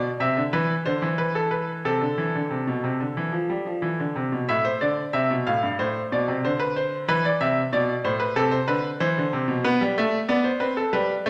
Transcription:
0.20 C3 E5
0.37 D3
0.53 E3 B4
0.86 D3 C5
1.02 E3
1.18 B4
1.35 A4
1.51 B4
1.85 C3 A4
2.01 D3
2.18 E3
2.35 D3
2.50 C3
2.67 B2
2.84 C3
3.00 D3
3.17 E3
3.32 F3
3.49 G3
3.66 F3
3.82 E3
3.99 D3
4.16 C3
4.32 B2
4.49 A2 E5
4.65 C5
4.81 D3 D5
5.13 C3 E5
5.31 B2
5.47 A2 F5
5.63 G2
5.79 A2 C5
6.12 B2 D5
6.28 C3
6.45 D3 C5
6.60 B4
6.76 C5
7.08 E3 B4
7.25 D5
7.41 C3 E5
7.72 B2 D5
8.04 A2 C5
8.20 B4
8.36 C3 A4
8.51 C5
8.67 D3 B4
9.00 E3 C5
9.18 D3
9.33 C3
9.48 B2
9.64 B3 B4
9.81 G3
9.98 A3 E5
10.28 B3 D5
10.44 C5
10.60 C4 B4
10.77 A4
10.93 G3 B4
11.26 A3 C5

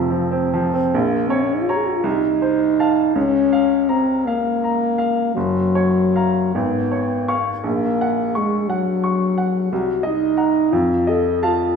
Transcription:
Already playing: F1 F2 C3 F3 C4 F4 A4
0.10 F3
0.31 C4
0.54 F3
0.74 C4
0.94 A#1 A#3
1.28 C4 C#5
1.43 C#4
1.55 D#4
1.61 F4
1.69 F#4 C#5 A#5
1.76 G#4
1.87 F#4
1.95 F4
2.04 C2 D#4
2.42 C5
2.80 F5 A5
3.15 C#2 C#4
3.53 F5
3.89 C4 A#5
4.26 A#3 F5
4.64 A#5
4.98 F5
5.35 F#1 F#3
5.75 C#5
6.16 F5 A#5
6.55 G#1 B3
6.92 C#5
7.28 F5 C#6
7.64 A#1 A#3
8.01 F#5
8.35 G#3 C#6
8.68 F#3 F#5
9.04 C#6
9.38 F#5
9.72 C2 F#4
10.03 D#4 D#5
10.37 F#5 A#5
10.72 F2 F4
11.07 A4 D#5
11.43 F4 F5 A5

